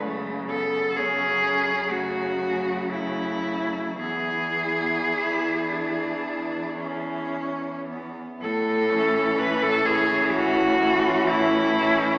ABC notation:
X:1
M:4/4
L:1/16
Q:1/4=62
K:A
V:1 name="Cello"
z2 A2 G4 F4 E4 | G12 z4 | A4 B A G2 F4 E4 |]
V:2 name="Cello"
A,2 B,2 C4 A,2 A,6 | B,4 E2 D4 C4 B,2 | z2 C4 C4 C4 C2 |]
V:3 name="Cello" clef=bass
C,4 C,4 C,8 | E,16 | z2 E,4 E,4 E,4 E,2 |]
V:4 name="Cello" clef=bass
F,,16 | E,,16 | A,,4 A,,4 A,,4 A,,4 |]